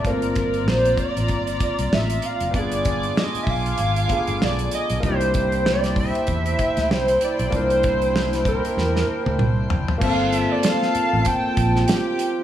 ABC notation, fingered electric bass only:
X:1
M:4/4
L:1/16
Q:"Swing 16ths" 1/4=96
K:Gdor
V:1 name="Fingered electric bass" clef=bass
G,,,4 B,,,2 z A,,, G,,,2 z C,, A,,,2 z ^F,,, | G,,,4 z2 =B,,,2 _A,,,2 z G,,, B,,,2 z B,,, | C,,6- C,, z E,,2 z D,, C,,2 z =B,,, | C,,6- C,, z E,,2 z D,, C,,2 ^F,,, z |
G,,,3 z4 A,,, z2 B,,,2 z4 |]